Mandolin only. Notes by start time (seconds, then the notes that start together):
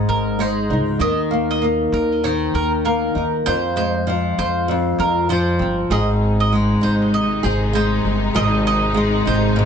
0.09 A#4
0.40 C5
1.01 D#5
1.51 D#5
1.94 A#4
2.24 C5
2.55 A#4
2.85 A#4
3.46 C5
3.77 C5
4.39 C5
5.00 A#4
5.30 C5
5.92 D#5
6.40 D#5
6.83 C5
7.14 D#5
7.44 C5
7.75 C5
8.36 D#5
8.67 D#5
9.27 C5